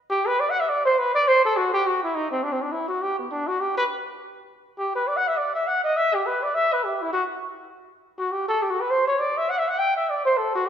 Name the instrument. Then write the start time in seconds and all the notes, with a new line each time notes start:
trumpet
0.10 G4
0.27 B4
0.40 D5
0.50 F#5
0.60 E5
0.69 D5
0.85 C5
0.98 B4
1.15 D5
1.28 C5
1.45 A4
1.57 F#4
1.73 G4
1.87 F#4
2.03 E4
2.15 D#4
2.31 C4
2.43 D4
2.52 C4
2.62 D4
2.72 E4
2.88 F#4
3.02 G4
3.19 B3
3.31 D4
3.47 F#4
3.60 G4
3.77 B4
4.78 G4
4.95 B4
5.07 D5
5.16 F#5
5.27 E5
5.37 D5
5.55 E5
5.67 F#5
5.84 D#5
5.96 E5
6.14 G4
6.26 B4
6.43 D5
6.54 E5
6.73 B4
6.84 G4
7.02 E4
7.13 F#4
8.19 F#4
8.31 G4
8.48 A4
8.62 G4
8.70 F#4
8.81 B4
8.90 C5
9.07 C#5
9.19 D5
9.37 E5
9.49 F#5
9.58 E5
9.68 F#5
9.78 G5
9.96 E5
10.10 D5
10.25 C5
10.37 A4
10.55 F#4
10.66 G4